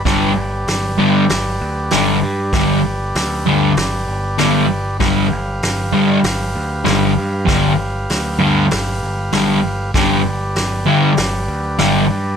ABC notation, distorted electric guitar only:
X:1
M:4/4
L:1/8
Q:1/4=97
K:Gmix
V:1 name="Distorted electric guitar" clef=bass
[G,,D,G,] z2 [G,,D,G,] z2 [G,,D,G,] z | [G,,D,G,] z2 [G,,D,G,] z2 [G,,D,G,] z | [G,,D,G,] z2 [G,,D,G,] z2 [G,,D,G,] z | [G,,D,G,] z2 [G,,D,G,] z2 [G,,D,G,] z |
[G,,D,G,] z2 [G,,D,G,] z2 [G,,D,G,] z |]